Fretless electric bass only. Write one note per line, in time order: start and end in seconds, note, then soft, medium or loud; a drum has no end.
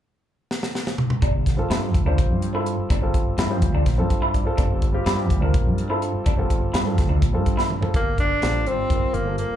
1.22 1.33 G1 medium
1.34 1.56 G1 medium
1.70 1.95 G2 medium
1.95 2.05 D2 medium
2.06 2.17 D2 medium
2.18 2.32 A#1 medium
2.30 2.74 G2 medium
2.78 muted fretless electric bass stroke soft
2.90 3.01 G1 medium
3.02 3.24 G1 medium
3.38 3.62 G2 medium
3.62 3.73 D2 medium
3.74 3.85 D2 medium
3.86 3.99 A#1 medium
3.98 4.42 G2 medium
4.45 muted fretless electric bass stroke soft
4.58 4.69 G1 medium
4.70 4.92 G1 medium
5.06 5.30 G2 medium
5.30 5.41 D2 medium
5.42 5.53 D2 medium
5.54 5.68 A#1 medium
5.66 6.10 G2 medium
6.14 muted fretless electric bass stroke soft
6.26 6.37 G1 medium
6.38 6.60 G1 medium
6.74 6.98 G2 medium
6.98 7.09 D2 medium
7.10 7.21 D2 medium
7.22 7.35 A#1 medium
7.34 7.78 G2 medium
7.82 muted fretless electric bass stroke soft
7.94 8.16 G1 medium
8.18 8.29 G1 medium
8.43 8.66 A#1 medium
8.66 8.77 G1 medium
8.90 9.01 G1 medium
9.02 muted fretless electric bass stroke soft
9.14 9.36 G1 medium
9.50 muted fretless electric bass stroke soft